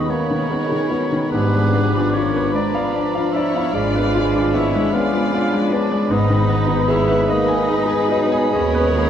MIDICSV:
0, 0, Header, 1, 11, 480
1, 0, Start_track
1, 0, Tempo, 816327
1, 780, Time_signature, 12, 3, 24, 8
1, 1260, Tempo, 792602
1, 4140, Tempo, 829876
1, 5412, End_track
2, 0, Start_track
2, 0, Title_t, "Flute"
2, 0, Program_c, 0, 73
2, 0, Note_on_c, 0, 85, 50
2, 55, Note_on_c, 0, 83, 61
2, 64, Note_off_c, 0, 85, 0
2, 618, Note_off_c, 0, 83, 0
2, 776, Note_on_c, 0, 86, 58
2, 1500, Note_on_c, 0, 82, 60
2, 1509, Note_off_c, 0, 86, 0
2, 2229, Note_on_c, 0, 80, 61
2, 2238, Note_off_c, 0, 82, 0
2, 2950, Note_off_c, 0, 80, 0
2, 2954, Note_on_c, 0, 80, 65
2, 3652, Note_off_c, 0, 80, 0
2, 3665, Note_on_c, 0, 83, 70
2, 4377, Note_on_c, 0, 87, 68
2, 4385, Note_off_c, 0, 83, 0
2, 5412, Note_off_c, 0, 87, 0
2, 5412, End_track
3, 0, Start_track
3, 0, Title_t, "Violin section"
3, 0, Program_c, 1, 48
3, 0, Note_on_c, 1, 83, 50
3, 752, Note_off_c, 1, 83, 0
3, 778, Note_on_c, 1, 83, 60
3, 3639, Note_off_c, 1, 83, 0
3, 3665, Note_on_c, 1, 83, 69
3, 5412, Note_off_c, 1, 83, 0
3, 5412, End_track
4, 0, Start_track
4, 0, Title_t, "Oboe"
4, 0, Program_c, 2, 68
4, 0, Note_on_c, 2, 75, 73
4, 59, Note_on_c, 2, 73, 79
4, 68, Note_off_c, 2, 75, 0
4, 773, Note_off_c, 2, 73, 0
4, 777, Note_on_c, 2, 71, 81
4, 1258, Note_on_c, 2, 73, 80
4, 1267, Note_off_c, 2, 71, 0
4, 1493, Note_on_c, 2, 74, 84
4, 1502, Note_off_c, 2, 73, 0
4, 1975, Note_on_c, 2, 76, 84
4, 1985, Note_off_c, 2, 74, 0
4, 2225, Note_on_c, 2, 77, 96
4, 2234, Note_off_c, 2, 76, 0
4, 2714, Note_on_c, 2, 76, 87
4, 2723, Note_off_c, 2, 77, 0
4, 2949, Note_on_c, 2, 77, 90
4, 2958, Note_off_c, 2, 76, 0
4, 3324, Note_off_c, 2, 77, 0
4, 3427, Note_on_c, 2, 74, 84
4, 3666, Note_on_c, 2, 75, 99
4, 3675, Note_off_c, 2, 74, 0
4, 4140, Note_on_c, 2, 76, 87
4, 4149, Note_off_c, 2, 75, 0
4, 4375, Note_on_c, 2, 75, 106
4, 4384, Note_off_c, 2, 76, 0
4, 4935, Note_off_c, 2, 75, 0
4, 5091, Note_on_c, 2, 73, 111
4, 5412, Note_off_c, 2, 73, 0
4, 5412, End_track
5, 0, Start_track
5, 0, Title_t, "Violin section"
5, 0, Program_c, 3, 48
5, 69, Note_on_c, 3, 70, 63
5, 778, Note_on_c, 3, 68, 68
5, 784, Note_off_c, 3, 70, 0
5, 1260, Note_off_c, 3, 68, 0
5, 1264, Note_on_c, 3, 70, 63
5, 1501, Note_off_c, 3, 70, 0
5, 1502, Note_on_c, 3, 71, 60
5, 1972, Note_off_c, 3, 71, 0
5, 1975, Note_on_c, 3, 73, 70
5, 2217, Note_on_c, 3, 74, 82
5, 2223, Note_off_c, 3, 73, 0
5, 2703, Note_on_c, 3, 73, 67
5, 2705, Note_off_c, 3, 74, 0
5, 2942, Note_off_c, 3, 73, 0
5, 2946, Note_on_c, 3, 74, 75
5, 3426, Note_off_c, 3, 74, 0
5, 3427, Note_on_c, 3, 71, 69
5, 3655, Note_off_c, 3, 71, 0
5, 3662, Note_on_c, 3, 71, 78
5, 4131, Note_off_c, 3, 71, 0
5, 4147, Note_on_c, 3, 73, 67
5, 4375, Note_on_c, 3, 71, 81
5, 4378, Note_off_c, 3, 73, 0
5, 5097, Note_off_c, 3, 71, 0
5, 5107, Note_on_c, 3, 70, 90
5, 5412, Note_off_c, 3, 70, 0
5, 5412, End_track
6, 0, Start_track
6, 0, Title_t, "Grand piano"
6, 0, Program_c, 4, 0
6, 0, Control_c, 4, 64, 127
6, 0, Note_on_c, 4, 44, 55
6, 0, Note_on_c, 4, 51, 43
6, 0, Note_on_c, 4, 59, 46
6, 0, Note_on_c, 4, 63, 45
6, 0, Note_on_c, 4, 68, 49
6, 0, Note_on_c, 4, 71, 46
6, 0, Note_on_c, 4, 75, 50
6, 0, Note_on_c, 4, 80, 53
6, 53, Note_off_c, 4, 59, 0
6, 53, Note_on_c, 4, 59, 49
6, 134, Note_off_c, 4, 51, 0
6, 180, Note_on_c, 4, 51, 45
6, 248, Note_off_c, 4, 59, 0
6, 304, Note_on_c, 4, 59, 49
6, 371, Note_off_c, 4, 51, 0
6, 421, Note_on_c, 4, 51, 50
6, 493, Note_off_c, 4, 59, 0
6, 535, Note_on_c, 4, 59, 50
6, 612, Note_off_c, 4, 51, 0
6, 661, Note_on_c, 4, 51, 50
6, 729, Note_off_c, 4, 59, 0
6, 753, Note_off_c, 4, 44, 0
6, 781, Note_off_c, 4, 51, 0
6, 790, Control_c, 4, 64, 0
6, 791, Note_off_c, 4, 80, 0
6, 791, Note_on_c, 4, 44, 62
6, 794, Note_off_c, 4, 71, 0
6, 795, Note_off_c, 4, 75, 0
6, 796, Note_off_c, 4, 63, 0
6, 796, Note_off_c, 4, 68, 0
6, 898, Control_c, 4, 64, 127
6, 908, Note_on_c, 4, 56, 51
6, 1030, Note_on_c, 4, 59, 54
6, 1098, Note_off_c, 4, 56, 0
6, 1150, Note_on_c, 4, 62, 51
6, 1217, Note_off_c, 4, 59, 0
6, 1270, Note_on_c, 4, 65, 52
6, 1337, Note_off_c, 4, 62, 0
6, 1395, Note_on_c, 4, 71, 52
6, 1457, Note_off_c, 4, 65, 0
6, 1509, Note_on_c, 4, 74, 62
6, 1577, Note_off_c, 4, 71, 0
6, 1625, Note_on_c, 4, 77, 64
6, 1694, Note_off_c, 4, 74, 0
6, 1752, Note_on_c, 4, 74, 55
6, 1813, Note_off_c, 4, 77, 0
6, 1870, Note_on_c, 4, 77, 62
6, 1938, Note_off_c, 4, 74, 0
6, 1996, Note_on_c, 4, 74, 58
6, 2059, Note_off_c, 4, 77, 0
6, 2118, Note_on_c, 4, 77, 62
6, 2185, Note_off_c, 4, 74, 0
6, 2233, Note_on_c, 4, 74, 61
6, 2307, Note_off_c, 4, 77, 0
6, 2357, Note_on_c, 4, 71, 52
6, 2425, Note_off_c, 4, 74, 0
6, 2471, Note_on_c, 4, 65, 53
6, 2546, Note_off_c, 4, 71, 0
6, 2597, Note_on_c, 4, 62, 56
6, 2662, Note_off_c, 4, 65, 0
6, 2712, Note_on_c, 4, 59, 49
6, 2786, Note_off_c, 4, 62, 0
6, 2838, Note_on_c, 4, 56, 55
6, 2903, Note_off_c, 4, 59, 0
6, 2956, Note_on_c, 4, 59, 60
6, 3026, Note_off_c, 4, 56, 0
6, 3069, Note_on_c, 4, 56, 53
6, 3146, Note_off_c, 4, 59, 0
6, 3194, Note_on_c, 4, 59, 54
6, 3262, Note_off_c, 4, 56, 0
6, 3312, Note_on_c, 4, 56, 58
6, 3383, Note_off_c, 4, 59, 0
6, 3428, Note_on_c, 4, 59, 58
6, 3501, Note_off_c, 4, 56, 0
6, 3545, Note_on_c, 4, 56, 56
6, 3617, Note_off_c, 4, 59, 0
6, 3645, Note_off_c, 4, 44, 0
6, 3659, Note_on_c, 4, 44, 77
6, 3663, Note_off_c, 4, 56, 0
6, 3675, Control_c, 4, 64, 0
6, 3764, Control_c, 4, 64, 127
6, 3777, Note_on_c, 4, 51, 54
6, 3894, Note_on_c, 4, 59, 64
6, 3969, Note_off_c, 4, 51, 0
6, 4008, Note_on_c, 4, 63, 55
6, 4090, Note_off_c, 4, 59, 0
6, 4128, Note_on_c, 4, 68, 64
6, 4206, Note_off_c, 4, 63, 0
6, 4244, Note_on_c, 4, 71, 61
6, 4322, Note_off_c, 4, 68, 0
6, 4362, Note_on_c, 4, 75, 64
6, 4438, Note_off_c, 4, 71, 0
6, 4478, Note_on_c, 4, 80, 65
6, 4556, Note_off_c, 4, 75, 0
6, 4591, Note_on_c, 4, 75, 56
6, 4674, Note_off_c, 4, 80, 0
6, 4717, Note_on_c, 4, 80, 67
6, 4793, Note_off_c, 4, 75, 0
6, 4844, Note_on_c, 4, 75, 68
6, 4918, Note_off_c, 4, 80, 0
6, 4961, Note_on_c, 4, 80, 73
6, 5044, Note_off_c, 4, 75, 0
6, 5084, Note_on_c, 4, 75, 70
6, 5165, Note_off_c, 4, 80, 0
6, 5208, Note_on_c, 4, 71, 70
6, 5286, Note_off_c, 4, 75, 0
6, 5335, Note_on_c, 4, 68, 60
6, 5407, Note_off_c, 4, 71, 0
6, 5412, Note_off_c, 4, 44, 0
6, 5412, Note_off_c, 4, 68, 0
6, 5412, End_track
7, 0, Start_track
7, 0, Title_t, "Cello section"
7, 0, Program_c, 5, 48
7, 50, Note_on_c, 5, 61, 54
7, 760, Note_off_c, 5, 61, 0
7, 768, Note_on_c, 5, 59, 64
7, 1245, Note_off_c, 5, 59, 0
7, 1252, Note_on_c, 5, 61, 62
7, 1488, Note_on_c, 5, 62, 59
7, 1495, Note_off_c, 5, 61, 0
7, 1970, Note_on_c, 5, 64, 62
7, 1974, Note_off_c, 5, 62, 0
7, 2216, Note_on_c, 5, 65, 76
7, 2221, Note_off_c, 5, 64, 0
7, 2705, Note_off_c, 5, 65, 0
7, 2712, Note_on_c, 5, 64, 77
7, 2951, Note_off_c, 5, 64, 0
7, 2954, Note_on_c, 5, 65, 64
7, 3421, Note_off_c, 5, 65, 0
7, 3426, Note_on_c, 5, 62, 59
7, 3662, Note_on_c, 5, 63, 77
7, 3663, Note_off_c, 5, 62, 0
7, 4131, Note_off_c, 5, 63, 0
7, 4140, Note_on_c, 5, 64, 67
7, 4367, Note_on_c, 5, 63, 78
7, 4370, Note_off_c, 5, 64, 0
7, 5079, Note_off_c, 5, 63, 0
7, 5090, Note_on_c, 5, 61, 81
7, 5412, Note_off_c, 5, 61, 0
7, 5412, End_track
8, 0, Start_track
8, 0, Title_t, "Viola section"
8, 0, Program_c, 6, 48
8, 0, Note_on_c, 6, 59, 45
8, 57, Note_on_c, 6, 56, 50
8, 60, Note_off_c, 6, 59, 0
8, 178, Note_off_c, 6, 56, 0
8, 179, Note_on_c, 6, 59, 50
8, 298, Note_on_c, 6, 63, 59
8, 299, Note_off_c, 6, 59, 0
8, 413, Note_on_c, 6, 68, 52
8, 418, Note_off_c, 6, 63, 0
8, 536, Note_off_c, 6, 68, 0
8, 537, Note_on_c, 6, 63, 53
8, 658, Note_off_c, 6, 63, 0
8, 661, Note_on_c, 6, 59, 50
8, 780, Note_on_c, 6, 56, 57
8, 781, Note_off_c, 6, 59, 0
8, 781, Note_on_c, 6, 62, 56
8, 892, Note_off_c, 6, 56, 0
8, 902, Note_on_c, 6, 59, 51
8, 1015, Note_off_c, 6, 62, 0
8, 1022, Note_off_c, 6, 59, 0
8, 1022, Note_on_c, 6, 62, 56
8, 1141, Note_on_c, 6, 65, 51
8, 1142, Note_off_c, 6, 62, 0
8, 1255, Note_on_c, 6, 62, 47
8, 1260, Note_off_c, 6, 65, 0
8, 1377, Note_on_c, 6, 59, 52
8, 1378, Note_off_c, 6, 62, 0
8, 1496, Note_on_c, 6, 56, 56
8, 1498, Note_off_c, 6, 59, 0
8, 1616, Note_off_c, 6, 56, 0
8, 1617, Note_on_c, 6, 59, 53
8, 1737, Note_off_c, 6, 59, 0
8, 1738, Note_on_c, 6, 62, 59
8, 1858, Note_off_c, 6, 62, 0
8, 1860, Note_on_c, 6, 65, 52
8, 1981, Note_off_c, 6, 65, 0
8, 1981, Note_on_c, 6, 62, 57
8, 2103, Note_off_c, 6, 62, 0
8, 2107, Note_on_c, 6, 59, 55
8, 2226, Note_on_c, 6, 56, 52
8, 2228, Note_off_c, 6, 59, 0
8, 2340, Note_off_c, 6, 56, 0
8, 2346, Note_on_c, 6, 59, 57
8, 2468, Note_off_c, 6, 59, 0
8, 2471, Note_on_c, 6, 62, 57
8, 2589, Note_on_c, 6, 65, 54
8, 2590, Note_off_c, 6, 62, 0
8, 2705, Note_on_c, 6, 62, 56
8, 2709, Note_off_c, 6, 65, 0
8, 2825, Note_on_c, 6, 59, 55
8, 2828, Note_off_c, 6, 62, 0
8, 2943, Note_on_c, 6, 56, 62
8, 2948, Note_off_c, 6, 59, 0
8, 3066, Note_on_c, 6, 59, 58
8, 3067, Note_off_c, 6, 56, 0
8, 3184, Note_on_c, 6, 62, 67
8, 3188, Note_off_c, 6, 59, 0
8, 3307, Note_off_c, 6, 62, 0
8, 3307, Note_on_c, 6, 65, 59
8, 3424, Note_on_c, 6, 62, 61
8, 3427, Note_off_c, 6, 65, 0
8, 3540, Note_on_c, 6, 59, 55
8, 3544, Note_off_c, 6, 62, 0
8, 3652, Note_on_c, 6, 63, 64
8, 3653, Note_on_c, 6, 56, 65
8, 3661, Note_off_c, 6, 59, 0
8, 3767, Note_off_c, 6, 56, 0
8, 3770, Note_on_c, 6, 59, 59
8, 3882, Note_off_c, 6, 63, 0
8, 3889, Note_on_c, 6, 63, 59
8, 3894, Note_off_c, 6, 59, 0
8, 4013, Note_on_c, 6, 68, 53
8, 4014, Note_off_c, 6, 63, 0
8, 4129, Note_on_c, 6, 63, 58
8, 4138, Note_off_c, 6, 68, 0
8, 4245, Note_on_c, 6, 59, 52
8, 4252, Note_off_c, 6, 63, 0
8, 4357, Note_on_c, 6, 56, 58
8, 4368, Note_off_c, 6, 59, 0
8, 4478, Note_on_c, 6, 59, 63
8, 4483, Note_off_c, 6, 56, 0
8, 4597, Note_on_c, 6, 63, 63
8, 4603, Note_off_c, 6, 59, 0
8, 4714, Note_on_c, 6, 68, 58
8, 4723, Note_off_c, 6, 63, 0
8, 4834, Note_on_c, 6, 63, 60
8, 4843, Note_off_c, 6, 68, 0
8, 4952, Note_on_c, 6, 59, 57
8, 4965, Note_off_c, 6, 63, 0
8, 5080, Note_on_c, 6, 56, 64
8, 5086, Note_off_c, 6, 59, 0
8, 5201, Note_on_c, 6, 59, 61
8, 5202, Note_off_c, 6, 56, 0
8, 5329, Note_on_c, 6, 63, 64
8, 5331, Note_off_c, 6, 59, 0
8, 5412, Note_off_c, 6, 63, 0
8, 5412, End_track
9, 0, Start_track
9, 0, Title_t, "French horn section"
9, 0, Program_c, 7, 60
9, 0, Note_on_c, 7, 56, 46
9, 0, Note_on_c, 7, 63, 52
9, 752, Note_off_c, 7, 56, 0
9, 776, Note_on_c, 7, 53, 54
9, 777, Note_off_c, 7, 63, 0
9, 778, Note_on_c, 7, 62, 57
9, 3556, Note_off_c, 7, 53, 0
9, 3556, Note_off_c, 7, 62, 0
9, 3659, Note_on_c, 7, 59, 65
9, 3660, Note_on_c, 7, 56, 66
9, 5412, Note_off_c, 7, 56, 0
9, 5412, Note_off_c, 7, 59, 0
9, 5412, End_track
10, 0, Start_track
10, 0, Title_t, "Bassoon"
10, 0, Program_c, 8, 70
10, 59, Note_on_c, 8, 58, 61
10, 295, Note_on_c, 8, 56, 52
10, 303, Note_off_c, 8, 58, 0
10, 533, Note_on_c, 8, 54, 52
10, 542, Note_off_c, 8, 56, 0
10, 706, Note_off_c, 8, 54, 0
10, 778, Note_on_c, 8, 55, 57
10, 1330, Note_off_c, 8, 55, 0
10, 1496, Note_on_c, 8, 53, 61
10, 2229, Note_on_c, 8, 56, 66
10, 2239, Note_off_c, 8, 53, 0
10, 2949, Note_on_c, 8, 61, 67
10, 2958, Note_off_c, 8, 56, 0
10, 3659, Note_on_c, 8, 59, 61
10, 3668, Note_off_c, 8, 61, 0
10, 4371, Note_off_c, 8, 59, 0
10, 4374, Note_on_c, 8, 58, 73
10, 4605, Note_on_c, 8, 56, 75
10, 4614, Note_off_c, 8, 58, 0
10, 4850, Note_on_c, 8, 54, 63
10, 4858, Note_off_c, 8, 56, 0
10, 5086, Note_on_c, 8, 56, 69
10, 5095, Note_off_c, 8, 54, 0
10, 5334, Note_on_c, 8, 58, 80
10, 5343, Note_off_c, 8, 56, 0
10, 5412, Note_off_c, 8, 58, 0
10, 5412, End_track
11, 0, Start_track
11, 0, Title_t, "Double bass section"
11, 0, Program_c, 10, 48
11, 775, Note_on_c, 10, 32, 66
11, 1377, Note_off_c, 10, 32, 0
11, 2221, Note_on_c, 10, 32, 60
11, 2827, Note_off_c, 10, 32, 0
11, 3658, Note_on_c, 10, 32, 70
11, 4255, Note_off_c, 10, 32, 0
11, 5093, Note_on_c, 10, 39, 70
11, 5412, Note_off_c, 10, 39, 0
11, 5412, End_track
0, 0, End_of_file